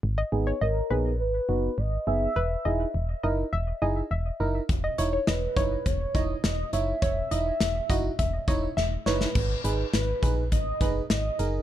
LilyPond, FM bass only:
\new Staff \with { instrumentName = "FM bass" } { \clef bass \time 4/4 \key gis \minor \tempo 4 = 103 gis,,8 gis,,8 gis,,8 ais,,8 gis,,8 fis,,8 gis,,8 fis,,8 | e,,8 e,,8 e,,8 fis,,8 e,,8 fis,,8 e,,8 fis,,8 | e,,8 e,,8 e,,8 fis,,8 e,,8 e,,8 e,,8 fis,,8 | e,,8 e,,8 e,,8 fis,,8 e,,8 e,,8 e,,8 fis,,8 |
gis,,8 gis,,8 gis,,8 ais,,8 gis,,8 fis,,8 gis,,8 fis,,8 | }